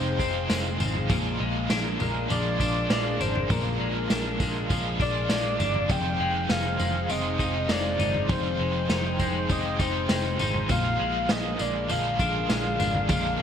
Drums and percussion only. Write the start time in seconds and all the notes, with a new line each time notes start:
0.19 kick, tambourine
0.50 snare, tambourine
0.80 floor tom, tambourine
0.95 floor tom
1.10 kick, floor tom, tambourine
1.70 snare, tambourine
2.00 floor tom, tambourine
2.30 floor tom, tambourine
2.60 kick, tambourine
2.90 snare, tambourine
3.21 floor tom, tambourine
3.35 floor tom
3.50 kick, floor tom, tambourine
4.10 snare, tambourine
4.40 kick, tambourine
4.70 kick, floor tom, tambourine
5.00 kick, tambourine
5.29 snare, tambourine
5.60 floor tom, tambourine
5.74 floor tom
5.89 kick, floor tom, tambourine
6.49 snare, tambourine
6.79 floor tom, tambourine
7.09 floor tom, tambourine
7.39 kick, tambourine
7.69 snare, tambourine
8.00 floor tom, tambourine
8.14 floor tom
8.29 kick, floor tom, tambourine
8.89 snare, tambourine
9.19 kick, tambourine
9.49 kick, floor tom, tambourine
9.79 kick, tambourine
10.09 snare, tambourine
10.39 floor tom, tambourine
10.54 floor tom
10.69 kick, floor tom, tambourine
11.29 snare, tambourine
11.59 tambourine
11.89 floor tom, tambourine
12.19 kick, tambourine
12.49 snare, tambourine
12.80 floor tom, tambourine
12.95 floor tom
13.09 kick, floor tom, tambourine